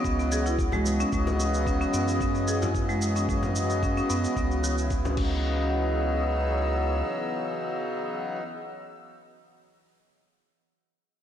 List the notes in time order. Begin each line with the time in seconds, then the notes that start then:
Already playing: C#3 E3 F#3 B3 F#4 C#5 D#5
0.05 C#2 B3, kick, cabasa
0.19 cabasa
0.32 G#4, cabasa
0.46 E4, cabasa
0.58 C#3 F#3 B3 D#5, kick, cabasa
0.72 G#3, frame drum, cabasa
0.86 cabasa
1.00 C#4, cabasa
1.11 C#2 C#3 F#3 B3 C#4 D#5, kick, cabasa
1.27 frame drum, cabasa
1.40 G#5, cabasa
1.54 cabasa
1.67 C#4, kick, cabasa
1.81 C#4, cabasa
1.94 F#2 B3, cabasa
2.08 cabasa
2.21 B3, kick, cabasa
2.35 cabasa
2.48 G#4, cabasa
2.62 E4, frame drum, cabasa
2.74 C#3 F#3 B3 D#5, kick, cabasa
2.89 G#3, cabasa
3.02 cabasa
3.16 C#4, cabasa
3.27 C#3 F#3 B3 C#4 D#5, kick, cabasa
3.43 frame drum, cabasa
3.56 cabasa
3.70 cabasa
3.83 C#4, kick, cabasa
3.97 C#4, cabasa
4.10 F#2 B3, cabasa
4.24 cabasa
4.36 C#2 B3, kick, cabasa
4.51 cabasa
4.64 F#4, cabasa
4.77 C#3 F#3 B3 E4, cabasa
4.91 kick, cabasa
5.05 C#4, frame drum, cabasa
5.14 C#2 C#3 F#3 B3 C#4, kick, crash
5.19 B3 D#4
5.25 E3
5.62 G#4
5.69 C#5
5.77 E6